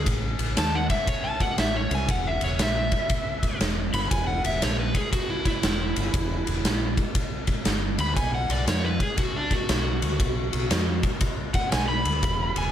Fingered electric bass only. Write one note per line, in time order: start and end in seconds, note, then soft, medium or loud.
0.07 0.37 A1 medium
0.39 0.56 A1 medium
0.57 0.88 D#2 medium
1.58 1.89 A1 medium
1.91 2.08 C2 loud
2.09 2.40 E1 medium
2.42 2.58 E1 medium
2.59 2.90 A#1 medium
3.61 3.91 E1 medium
3.94 4.10 G1 loud
4.11 4.42 E1 loud
4.44 4.61 E1 medium
4.63 4.93 A#1 medium
5.64 5.94 E1 medium
5.97 6.13 G1 loud
6.14 6.44 E1 medium
6.47 6.64 E1 medium
6.65 6.95 A#1 medium
7.66 7.97 G1 medium
7.98 8.15 D2 loud
8.17 8.47 B1 medium
8.49 8.66 B1 medium
8.67 8.98 F2 medium
9.70 10.00 B1 medium
10.02 10.19 D2 medium
10.20 10.50 B1 loud
10.53 10.70 B1 medium
10.71 11.01 F2 loud
11.73 12.04 B1 medium
12.06 12.22 D2 loud
12.23 12.54 E1 loud
12.56 12.72 E1 medium